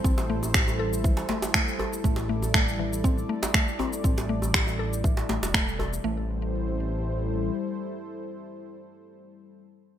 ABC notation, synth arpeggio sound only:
X:1
M:4/4
L:1/16
Q:1/4=120
K:Am
V:1 name="Synth arpeggio sound"
C2 A, z G2 A z E,2 A, z A, z A z | A,2 A, z A, z E, z C2 A, z A, z C2 | C2 A, z G2 A z E,2 A, z A, z A z | A,2 z12 z2 |
z16 |]